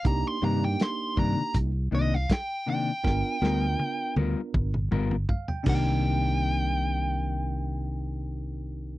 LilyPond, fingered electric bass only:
\new Staff \with { instrumentName = "Fingered electric bass" } { \clef bass \time 4/4 \key c \minor \tempo 4 = 80 c,16 r16 g,8 r8 g,16 r16 c,8 c,8 r4 | g,,16 r16 d,8 r8 d,16 r16 g,,8 g,,8 r8 c,8~ | c,1 | }